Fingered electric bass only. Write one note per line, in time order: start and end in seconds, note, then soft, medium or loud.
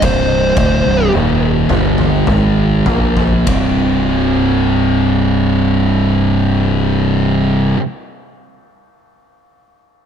0.02 0.53 C1 medium
0.57 0.83 D1 medium
0.86 1.12 C1 medium
1.14 1.67 D#1 medium
1.70 2.24 G1 medium
2.28 2.83 G#1 medium
2.87 3.44 A#1 medium
3.47 7.73 C1 medium